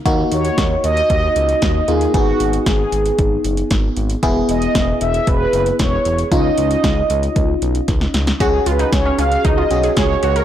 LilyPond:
<<
  \new Staff \with { instrumentName = "Analog polysynth" } { \time 4/4 \key des \mixolydian \tempo 4 = 115 r8 des''4 ees''2 aes'8 | ges'4 aes'4. r4. | r8 ees''4 e''8 b'4 des''4 | ees''2.~ ees''8 r8 |
aes'8 ces''8 des''8 f''8 ees''4 des''8 des''8 | }
  \new Staff \with { instrumentName = "Synth pluck" } { \time 4/4 \key des \mixolydian r1 | r1 | r1 | r1 |
ges'8 f'16 ees'8 des'16 des'8 ees'16 f'8 aes'16 aes'8 ges'16 bes'16 | }
  \new Staff \with { instrumentName = "FM electric piano" } { \time 4/4 \key des \mixolydian <bes ees' ges'>2.~ <bes ees' ges'>8 <bes ees' f'>8 | <ces' ees' aes'>1 | <b e' gis'>1 | <des' ees' f'>1 |
<des' ges' aes'>2~ <des' ges' aes'>8 <des' ges' aes'>4. | }
  \new Staff \with { instrumentName = "Analog synth bass" } { \clef bass \time 4/4 \key des \mixolydian ees,8 ees,8 ees,8 ees,8 ees,8 des,8 ees,8 ees,8 | aes,,8 aes,,8 aes,,8 aes,,8 aes,,8 ges,,8 aes,,8 aes,,8 | e,,8 e,,8 e,,8 e,,8 e,,8 ges,,8 e,,8 e,,8 | des,8 des,8 des,8 des,8 des,8 ces,8 des,8 des,8 |
des,8 des,8 des,8 des,8 des,8 ces,8 des,8 des,8 | }
  \new DrumStaff \with { instrumentName = "Drums" } \drummode { \time 4/4 <hh bd>8 hh16 hh16 <hh bd sn>8 hh16 hh16 <hh bd>8 hh16 hh16 <hh bd sn>8 hh16 hh16 | <hh bd>8 hh16 hh16 <hh bd sn>8 hh16 hh16 <hh bd>8 hh16 hh16 <hh bd sn>8 hh16 hh16 | <hh bd>8 hh16 hh16 <hh bd sn>8 hh16 hh16 <hh bd>8 hh16 hh16 <hh bd sn>8 hh16 hh16 | <hh bd>8 hh16 hh16 <hh bd sn>8 hh16 hh16 <hh bd>8 hh16 hh16 <hh bd sn>16 sn16 <hh sn>16 <hh sn>16 |
<hh bd>8 hh16 hh16 <hh bd sn>8 hh16 hh16 <hh bd>8 hh16 hh16 <hh bd sn>8 hh16 hh16 | }
>>